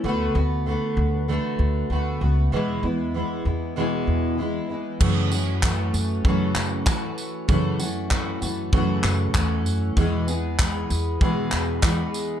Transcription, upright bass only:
\new Staff \with { instrumentName = "Upright bass" } { \clef bass \time 4/4 \key fis \minor \tempo 4 = 97 d,8 d,8. r16 d,8. r16 d,8 d,8 cis,8 | e,8 e,8. r16 e,8. r16 e,4 r8 | fis,4. fis,8 fis8 fis,4 r8 | fis,4. fis,8 fis8 fis,8 e,8 fis,8 |
e,4. e,8 e8 e,4 r8 | }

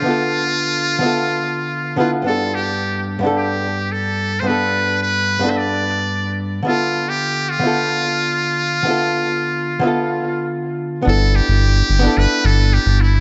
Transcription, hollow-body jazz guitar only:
\new Staff \with { instrumentName = "Hollow-body jazz guitar" } { \time 4/4 \key g \mixolydian \tempo 4 = 109 <d b f' a' e''>4.~ <d b f' a' e''>16 <d b f' a' e''>4.~ <d b f' a' e''>16 <d b e' f' b'>8 | <g, b d' e' a'>4.~ <g, b d' e' a'>16 <g, b d' e' a'>2~ <g, b d' e' a'>16 | <g, b d' e' a'>4.~ <g, b d' e' a'>16 <g, b d' e' a'>2~ <g, b d' e' a'>16 | <d b f' a' e''>4.~ <d b f' a' e''>16 <d b f' a' e''>2~ <d b f' a' e''>16 |
<d b f' a' e''>4.~ <d b f' a' e''>16 <d b f' a' e''>2~ <d b f' a' e''>16 | <b d' e' a'>4.~ <b d' e' a'>16 <b d' e' a'>2~ <b d' e' a'>16 | }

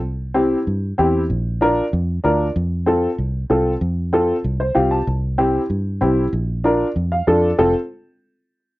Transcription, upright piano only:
\new Staff \with { instrumentName = "Upright piano" } { \time 4/4 \key f \major \tempo 4 = 191 << { r1 | r1 | r1 | r2 r8 c''8 f''8 a''8 |
r1 | r2 r8 f''8 d''4 | r1 | } \\ { r4 <c' e' g'>8 r4. <c' e' g'>8 r8 | r4 <d' f' bes'>8 r4. <d' f' bes'>8 r8 | r4 <c' f' a'>8 r4. <c' f' a'>8 r8 | r4 <c' f' a'>8 r4. <c' f' g'>8 r8 |
r4 <c' e' g'>8 r4. <c' e' g'>8 r8 | r4 <d' f' bes'>8 r4. <d' f' a'>8 r8 | <c' f' a'>8 r2. r8 | } >> }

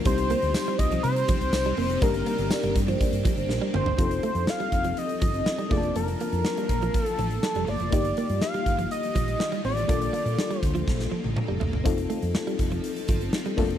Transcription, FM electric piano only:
\new Staff \with { instrumentName = "FM electric piano" } { \time 4/4 \key bes \major \tempo 4 = 122 <g c' ees' g' c''>1 | <g bes d' g' bes'>1 | <c' ees' f' a'>2.~ <c' ees' f' a'>8 <bes d' f' aes' a''>8~ | <bes d' f' aes' a''>2.~ <bes d' f' aes' a''>8 r8 |
<bes ees' g'>1 | <bes d' f' a'>1 | <c' ees' f' a'>2.~ <c' ees' f' a'>8 <bes d' f' a'>8 | }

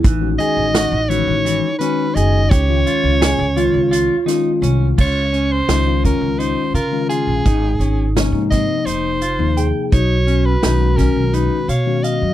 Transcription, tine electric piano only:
\new Staff \with { instrumentName = "Tine electric piano" } { \time 7/8 \key des \major \tempo 4 = 85 r16 <ees aes cis' ges'>4 r16 <ees aes cis' ges'>8. r16 <ees aes cis' ges'>4 | r16 <ees aes des' f'>4 r16 <ees aes des' f'>8. r16 <ees aes des' f'>4 | r4 <ees aes des' f'>16 <ees aes des' f'>4~ <ees aes des' f'>16 r16 <ees aes des' f'>8. | r4 <c f bes ees'>16 <c f bes ees'>4~ <c f bes ees'>16 r16 <c f bes ees'>8. |
r4 <ees aes des' ges'>16 <ees aes des' ges'>4~ <ees aes des' ges'>16 r16 <ees aes des' ges'>8. | }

